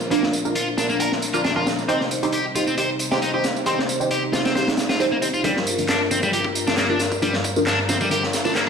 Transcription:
Already playing: A#2 F3 D4 A#4
0.01 tambourine
0.11 A#3 D4 F4 A#4, closed hi-hat, tambourine
0.23 snare
0.33 closed hi-hat, tambourine
0.45 D4 F4 A#4, tambourine
0.55 F4, closed hi-hat, tambourine
0.78 D4 F4 A#4, snare, closed hi-hat, tambourine
0.89 A#3, tambourine
1.00 D4 F4 A#4, closed hi-hat, tambourine
1.12 snare
1.22 closed hi-hat, tambourine
1.33 D4 F4 A#4, closed hi-hat, tambourine
1.44 D4, snare, closed hi-hat, tambourine
1.56 D4 F4 A#4
1.67 snare, closed hi-hat, tambourine
1.79 tambourine
1.88 C3 G3 C4 D#4 G4 C5, closed hi-hat, tambourine
2.01 snare
2.11 closed hi-hat, tambourine
2.23 D#4 G4 C5, closed hi-hat, tambourine
2.32 G4, closed hi-hat, tambourine
2.55 D#4 F4 G4 C5, closed hi-hat, tambourine
2.67 C4, tambourine
2.78 D#4 G4 C5, closed hi-hat, tambourine
2.99 closed hi-hat, tambourine
3.11 D#4 G4 C5, snare, tambourine
3.22 D#4, closed hi-hat, tambourine
3.34 D#4 G4 C5
3.44 snare, closed hi-hat, tambourine
3.57 tambourine
3.66 C4 D#4 G4 C5, closed hi-hat, tambourine
3.79 snare
3.89 closed hi-hat, tambourine
4.00 D#4 G4 C5, tambourine
4.11 G4, closed hi-hat, tambourine
4.33 D#4 F4 G4 C5, snare, closed hi-hat, tambourine
4.45 C4, snare, closed hi-hat, tambourine
4.55 D#4 G4 C5, snare, closed hi-hat, tambourine
4.68 snare, closed hi-hat
4.77 snare, closed hi-hat, tambourine
4.89 F4, snare, closed hi-hat, tambourine
5.00 C4 D#4 G4 C5, closed hi-hat, tambourine
5.12 A#3
5.22 C4 D#4 G4 C5, closed hi-hat, tambourine
5.34 F4, tambourine
5.44 G2 G3 D4 F4 A#4, kick, closed hi-hat, tambourine
5.56 snare
5.67 closed hi-hat, tambourine
5.78 D4 F4 A#4, closed hi-hat, tambourine
5.88 D4, snare, clap, closed hi-hat, tambourine
6.11 C4 D4 F4, closed hi-hat, tambourine
6.23 G3, kick, tambourine
6.33 D4 F4 G4 A#4, closed hi-hat, tambourine
6.44 kick
6.55 closed hi-hat, tambourine
6.67 D4 F4 A#4, snare, tambourine
6.77 A#3, snare, clap, closed hi-hat, tambourine
6.90 D4 F4 A#4
6.99 snare, closed hi-hat, tambourine
7.12 kick, tambourine
7.22 G3 D4 F4 A#4, kick, closed hi-hat, tambourine
7.33 snare
7.44 kick, closed hi-hat, tambourine
7.56 D4 F4 A#4, tambourine
7.67 D4, snare, clap, closed hi-hat, tambourine
7.89 C4 D4 F4 A#4, snare, closed hi-hat, tambourine
8.01 G3, kick, tambourine
8.11 D4 F4 G4 A#4, closed hi-hat, tambourine
8.23 snare
8.33 snare, closed hi-hat, tambourine
8.45 D4 F4 A#4, snare, tambourine
8.55 A#3, snare, clap, closed hi-hat, tambourine

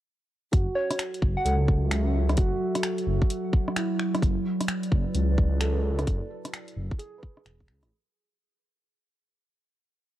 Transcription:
0.52 F#1 F#3 F#4, kick, closed hi-hat
0.69 A4
0.75 F#4 C#5
0.84 E5
0.91 cross-stick, closed hi-hat
0.99 finger snap, closed hi-hat
1.14 closed hi-hat
1.22 F#1, kick
1.37 F#5
1.45 C#2 A4 F#5, closed hi-hat
1.68 kick
1.91 finger snap, closed hi-hat
2.14 C#2
2.29 cross-stick, closed hi-hat
2.37 F#1 F#4, kick, closed hi-hat
2.75 cross-stick, closed hi-hat
2.83 finger snap, closed hi-hat
2.98 closed hi-hat
3.07 F#1
3.22 kick
3.30 closed hi-hat
3.53 kick
3.68 cross-stick
3.76 E4, finger snap, closed hi-hat
4.00 finger snap
4.15 cross-stick, closed hi-hat
4.22 F#1, kick, closed hi-hat
4.36 D5
4.42 B4
4.61 cross-stick, closed hi-hat
4.68 finger snap, closed hi-hat
4.83 closed hi-hat
4.92 F#1, kick
5.15 C#2, closed hi-hat
5.38 kick
5.61 A4, finger snap, closed hi-hat
5.83 C#2
5.99 cross-stick, closed hi-hat
6.07 F#1, kick, closed hi-hat
6.45 cross-stick, closed hi-hat
6.54 finger snap, closed hi-hat
6.68 closed hi-hat
6.76 F#1
6.91 kick
6.99 G#4, closed hi-hat
7.18 B4
7.23 kick
7.37 cross-stick
7.45 E1, finger snap, closed hi-hat
7.60 kick
7.68 C#2, finger snap
7.83 A1, cross-stick, closed hi-hat

